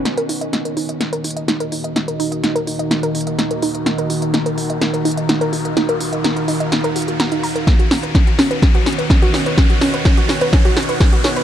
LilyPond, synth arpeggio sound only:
\new Staff \with { instrumentName = "Synth arpeggio sound" } { \time 4/4 \key ees \minor \tempo 4 = 126 ees'16 bes'16 ees'16 ees''16 ees'16 bes'16 ees'16 ees''16 ees'16 bes'16 ees'16 ees''16 ees'16 bes'16 ees'16 ees''16 | ees'16 bes'16 ees'16 ees''16 ees'16 bes'16 ees'16 ees''16 ees'16 bes'16 ees'16 ees''16 ees'16 bes'16 ees'16 ees''16 | ees'16 bes'16 ees'16 ees''16 ees'16 bes'16 ees'16 ees''16 ees'16 bes'16 ees'16 ees''16 ees'16 bes'16 ees'16 ees''16 | ees'16 bes'16 ees'16 ees''16 ees'16 bes'16 ees'16 ees''16 ees'16 bes'16 ges'16 ges'16 bes''16 ees'16 bes''16 bes'16 |
cis'16 fis'16 cis'16 b'16 cis'16 fis'16 cis'16 b'16 cis'16 fis'16 cis'16 b'16 cis'16 fis'16 cis'16 b'16 | cis'16 fis'16 cis'16 b'16 cis'16 fis'16 cis'16 b'16 cis'16 fis'16 cis'16 b'16 cis'16 fis'16 cis'16 b'16 | }